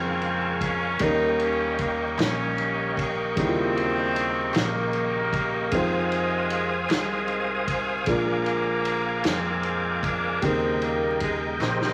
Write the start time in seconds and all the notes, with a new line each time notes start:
Already playing: F2 A#2 C#3 F3 G#3 A#3 C4 F4 A#4 F5 G#5 C#6
0.21 ride bell
0.61 C#4, kick, ride bell
0.99 D#2 D#3 G3 A#3 C#4 D#4 D#5 G5, kick, ride bell
1.03 G3 A#3 D#4 A#4
1.40 C#4, ride bell
1.78 A#3, kick, ride bell
2.18 A#1 G3 A#3 C#4, snare, clap, ride bell
2.58 ride bell
2.97 kick, ride bell
3.36 D#2 C#3 D#3 G3 A#3 C4 D#4 E4, kick, ride bell
3.47 F4
3.77 ride bell
4.16 ride bell
4.54 A#1 C#3 G3 A#3, snare, clap, ride bell
4.93 ride bell
5.33 kick, ride bell
5.71 F2 C3 D#3 G#3 C4 D#4 F4 C5 F5 G#5 D#6, kick, ride bell
5.75 G#3 C5
6.12 ride bell
6.50 ride bell
6.89 C2 C3 D#3 G#3, snare, clap, ride bell
7.28 ride bell
7.68 kick, ride bell
8.06 A#1 A#2 D3 F3 G#3 A#3 D4 F4 A#4 D6, kick, ride bell
8.46 ride bell
8.85 ride bell
9.24 F2 F3 G#3 C4, snare, clap, ride bell
9.63 ride bell
10.03 D4, kick, ride bell
10.42 D#2 C#3 D#3 G3 A#3 C4 D#4 G4 A#4 D#5 G5, kick, ride bell
10.82 A#3, ride bell
11.20 G#3, kick, ride bell
11.60 A#1 A#2 C#3 G3 G4 C5, snare, clap
11.82 snare